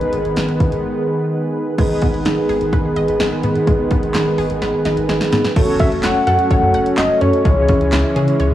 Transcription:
Already playing: D#3 G#3 B3 D#4 G#4 B4
0.01 closed hi-hat
0.13 G#1, closed hi-hat
0.25 G#1, closed hi-hat
0.36 G#1, snare, closed hi-hat
0.49 closed hi-hat
0.60 G#2, kick, closed hi-hat
0.72 closed hi-hat
1.78 G#1 D#3 G#3 B3 D#4 G#4 B4, kick, closed hi-hat, crash
2.02 G#1 B3, kick, closed hi-hat
2.14 G#1, closed hi-hat
2.25 G#1 D#4, snare, closed hi-hat
2.49 G#1 G#4, open hi-hat
2.61 G#1, closed hi-hat
2.73 G#1 B4, kick, closed hi-hat
2.96 G#1 D#5, closed hi-hat
3.08 G#1, closed hi-hat
3.20 G#1 G#3, snare, closed hi-hat
3.43 G#2 B3, closed hi-hat
3.55 closed hi-hat
3.67 G#1 G#3, kick, closed hi-hat
3.91 G#1 B3, kick, closed hi-hat
4.03 G#1, closed hi-hat
4.14 G#1 D#4, snare, clap, closed hi-hat
4.38 G#1 G#4, open hi-hat
4.50 G#1, closed hi-hat
4.62 G#1 B4, snare, closed hi-hat
4.85 G#1 D#5, snare, closed hi-hat
4.97 G#1, closed hi-hat
5.09 G#1 G#3, snare, closed hi-hat
5.21 snare
5.32 G#2 B3, snare, closed hi-hat
5.44 snare, closed hi-hat
5.56 F#1 F#3 A3 C#4 F#4 A4 C#5, kick, closed hi-hat, crash
5.68 F#1
5.80 C#4 E5, kick, closed hi-hat
5.92 F#1, closed hi-hat
6.03 F#1 F#4 F#5, snare, clap, closed hi-hat
6.27 F#2 A4 F#5, closed hi-hat
6.39 closed hi-hat
6.51 F#1 C#5, kick, closed hi-hat
6.63 F#2
6.74 F#1 F#5, closed hi-hat
6.86 closed hi-hat
6.98 F#1 D#5, snare, clap, closed hi-hat
7.21 F#2 C#4 C#5, closed hi-hat
7.33 closed hi-hat
7.45 C#2 E3 G#3 E4 G#4 C#5, kick, closed hi-hat
7.57 C#2
7.69 C#4, kick, closed hi-hat
7.81 C#2, closed hi-hat
7.92 C#2 E4, snare, clap, closed hi-hat
8.16 C#3 G#4, closed hi-hat
8.28 closed hi-hat
8.40 C#2 C#5, closed hi-hat

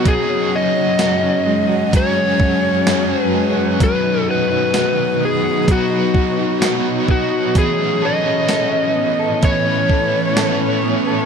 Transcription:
Already playing: F#3 B3 D#4 F#4
0.04 F#2 F#3 C#4 F#4 G#4, kick, closed hi-hat
0.08 G#4
0.29 C#4
0.52 F#4 D#5
0.76 C#4
0.99 F#4, snare, closed hi-hat, tambourine
1.23 C#4
1.46 G#3
1.69 F#4
1.92 F#3 C#4 F#4 G#4, kick, closed hi-hat
1.97 C#5
2.16 C#4
2.39 F#4, kick
2.63 C#4
2.86 F#3 C#4 F#4 G#4, snare, closed hi-hat, tambourine
3.10 C#4
3.22 B4
3.33 G#3
3.56 F#4
3.79 B2 D#3 F#3 B3 D#4 B4, kick, closed hi-hat
3.83 D#4 B4
4.03 D#4
4.26 F#4
4.31 B4
4.50 D#4
4.73 F#4, snare, closed hi-hat, tambourine
4.97 D#4
5.20 B3
5.25 G#4
5.43 F#4
5.67 F#3 B3 D#4 B4 C#5, kick, closed hi-hat
5.71 F#4
5.90 D#4
6.14 F#4, kick
6.37 D#4
6.60 F#3 B3 D#4 F#4 B4, snare, closed hi-hat, tambourine
6.85 D#4
7.08 B3 F#4, kick
7.31 F#4
7.54 A2 E3 A3 C#4 E4 B4, kick, closed hi-hat
7.59 G#4
7.79 C#4
8.02 C#4 E4 A4 B4 D#5
8.26 C#4
8.48 A4, snare, closed hi-hat, tambourine
8.72 C#4
8.96 B3
9.19 A4
9.41 E3 A3 C#4 E4 B4 C#5, kick, closed hi-hat
9.66 C#4
9.89 A4, kick
10.13 C#4
10.36 A3 C#4 E4 A4 B4, snare, closed hi-hat, tambourine
10.60 C#4
10.84 B3
11.07 A4

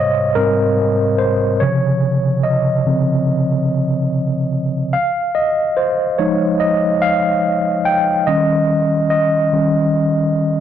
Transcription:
Already playing: G#2 C3 G3 C5 C#5 D#5 F5
0.35 G#2 G3 C4 A#4
1.18 C5
1.60 C3 C#3 F3 C#5
2.43 D#5
2.86 C#3 F3 C4
4.93 F5
5.35 D#5
5.77 C5
6.18 F3 G#3 D#4 C#5
6.60 D#5
7.02 F5
7.85 G5
8.27 D#3 G3 C#4 D#5
9.10 D#5
9.53 D#3 G3 C#4

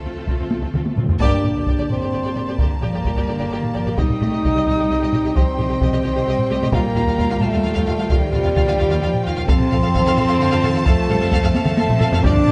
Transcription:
Already playing: F3 A3 F4 A4 C5
0.04 D2 C4 F4
0.12 D2 D3
0.18 D3 C4 F4
0.27 D2 D3 C4 F4, taiko
0.35 D2 D3
0.41 D3 C4 F4
0.50 D2 D3 C4 F4, taiko high
0.58 D2 D3
0.62 D3 C4 F4, taiko high
0.73 D2 D3 C4 F4, taiko mid
0.81 D3
0.86 D3, taiko high
0.96 D2 D3 C4 F4, taiko low-mid
1.04 D3
1.09 D2 D3 C4 F4, taiko low
1.20 G1 G3 A#3 D4 G4 D5 A5 D6, taiko
1.32 taiko low-mid
1.44 G1 G4 D5, taiko low-mid
1.55 G1 G4 D5
1.66 G1 G4 D5, taiko
1.78 G1 G4 D5
1.89 G1 C4 G4 D5 C6, taiko low-mid
2.01 G1 G4 D5
2.12 G1 G4 D5
2.23 G1 G4 D5
2.35 G1 G4 D5, taiko low-mid
2.47 G1 G4 D5
2.58 G1 D3 A#3 G4 D5 A#5, taiko
2.81 G1 F3 G4 D5, taiko low-mid
2.92 G1 G4 D5
3.04 G1 G3 G4 D5, taiko
3.16 G1 G4 D5
3.28 G1 D3 G4 D5
3.38 G1 G4 D5
3.50 G1 D#3 G4 D5
3.63 taiko low-mid
3.74 G1 F3 G4 D5
3.86 G1 G4 D5, taiko low-mid
3.97 C2 G3 C4 D#4 G4 D#5 G5 D#6, taiko
4.10 taiko low-mid
4.20 C2 A3 G4 D#5, taiko low-mid
4.32 C2 G4 D#5
4.43 C2 G3 G4 D#5, taiko
4.55 C2 G4 D#5
4.66 C2 G4 D#5, taiko low-mid
4.79 C2 G4 D#5
4.90 C2 G4 D#5
5.01 C2 G4 D#5
5.13 C2 G4 D#5, taiko low-mid
5.24 C2 G4 D#5
5.35 C2 F3 C4 G4 D#5 C6, taiko
5.59 C2 G4 D#5, taiko low-mid
5.70 C2 G4 D#5
5.81 C2 G4 D#5, taiko
5.92 C2 G4 D#5
6.04 C2 D#3 C4 G4 D#5 C6
6.16 C2 G4 D#5
6.27 C2 G3 G4 D#5
6.38 taiko low-mid
6.50 C2 A3 G4 D#5
6.61 C2 G4 D#5, taiko low-mid
6.71 D#2 A#2 F3 G3 A#3 F4 F5 A#5, taiko
6.83 taiko low-mid
6.95 D#2 F4 F5, taiko low-mid
7.06 D#2 F4 F5
7.17 D#2 F4 F5, taiko
7.29 D#2 F4 F5
7.41 D#2 A3 F4 F5 A5, taiko low-mid
7.52 D#2 F4 F5
7.64 D#2 F4 F5
7.74 D#2 F4 F5
7.87 D#2 F4 F5, taiko low-mid
7.98 D#2 F4 F5
8.10 D#2 D#3 G3 F4 F5 G5, taiko
8.32 D#2 C3 F4 F5, taiko low-mid
8.43 D#2 F4 F5
8.56 D#2 D3 F4 F5, taiko
8.67 D#2 F4 F5
8.79 D#2 D#3 F4 F5
8.90 D#2 F4 F5
9.02 D#2 F3 F4 F5
9.14 taiko low-mid
9.25 D#2 D#3 F4 F5
9.36 D#2 F4 F5, taiko low-mid
9.48 F2 C3 C4 A4 F5 A5 C6, taiko
9.60 taiko low-mid
9.71 F2 F3 A4 F5, taiko low-mid
9.83 F2 A4 F5
9.95 F2 D#3 A4 F5, taiko
10.06 F2 A4 F5
10.17 F2 F3 A4 F5, taiko low-mid
10.28 F2 A4 F5
10.39 F2 D3 A4 F5
10.51 F2 A4 F5
10.63 F2 D#3 A4 F5, taiko low-mid
10.74 F2 A4 F5
10.85 F2 F3 A3 A4 F5 A5, taiko
11.09 F2 G3 A4 F5, taiko low-mid
11.20 F2 A4 F5
11.31 F2 F3 A4 F5, taiko
11.43 F2 A4 F5
11.54 F2 A3 A4 F5 A5, taiko high
11.65 F2 A4 F5, taiko mid
11.77 F2 A4 F5, taiko high
11.89 taiko low-mid
11.99 F2 A4 F5, taiko low-mid
12.12 F2 A4 F5, taiko low
12.23 G2 D3 D4 G4 D5 A5 D6, taiko
12.35 taiko low-mid
12.47 G2 G4, taiko low-mid

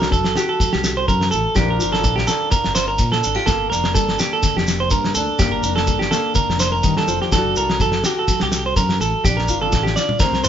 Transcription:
Already playing: C2 D4 F#4 A4 A#4
0.02 snare
0.11 F#1 D4 A4, kick, shekere
0.24 snare
0.36 F#4 G4, snare, shekere
0.49 A4
0.60 F#3, kick, shekere
0.73 C2 G4, snare
0.84 snare, shekere
0.97 C5
1.08 F#2 A#4, muted steel-string acoustic guitar stroke, kick, shekere
1.21 snare
1.31 A1 A4, shekere
1.55 A#1 A#2 F3 D4 F4 G4 A#4, kick, snare, shekere
1.70 A#4
1.80 G1 F4, shekere
1.92 A4, snare
2.04 A#1, muted steel-string acoustic guitar stroke, kick, shekere
2.16 G4, snare
2.27 D4 A4, snare, shekere
2.51 A#2 A#4, kick, shekere
2.64 G1, snare
2.75 C5, snare, shekere
2.88 A#4
2.98 A#2, kick, shekere
3.12 A4, snare
3.23 G#1 D4, shekere
3.35 F4 G4, snare
3.46 G1 G2 A#3 A4, kick, snare, shekere
3.70 F1 D4 A#4, snare, shekere
3.84 snare
3.94 G1 G3 A4, kick, shekere
4.09 snare
4.19 A#3 G4, snare, shekere
4.33 A4
4.42 D3, kick, snare, shekere
4.57 F1 G4, snare
4.67 snare, shekere
4.80 C5
4.90 G2 G3 A#4, kick, shekere
5.04 snare
5.15 D2 D4 A4, shekere
5.39 G1 G2 A#3 G4, kick, snare, shekere
5.52 A#4
5.63 F1 D4, shekere
5.76 A4, snare
5.87 G1 G3, kick, shekere
5.99 G4, snare
6.11 A#3 A4, snare, shekere
6.34 D3 A#4, kick, shekere
6.49 F1, snare
6.60 C5, snare, shekere
6.72 A#4
6.83 G2 D#3, kick, shekere
6.97 A4, snare
7.07 F1 F3, shekere
7.22 G4, snare
7.32 F#1 F#3 D4 F#4 A4, kick, snare, shekere
7.56 C2 A4 A#4, shekere
7.70 snare
7.79 F#1 D4 A4, kick, shekere
7.92 snare
8.04 F#4 G4, snare, shekere
8.19 A4
8.28 F#3, kick, shekere
8.40 C2 G4, snare
8.52 snare, shekere
8.66 C5
8.76 F#2 D4 A#4, kick, shekere
8.89 snare
9.00 A1 A4, shekere
9.24 A#1 A#2 D4 G4, kick, high tom, shekere
9.37 A#4, snare
9.48 G1 F4, kick, shekere
9.61 A4, high tom
9.72 A1 F3, kick, snare, shekere
9.83 G4, snare
9.96 D4 D5, snare, shekere
10.09 mid tom
10.19 D2 D3 C4 A#4, kick, snare, shekere
10.33 C2, snare
10.44 C5, mid tom, shekere

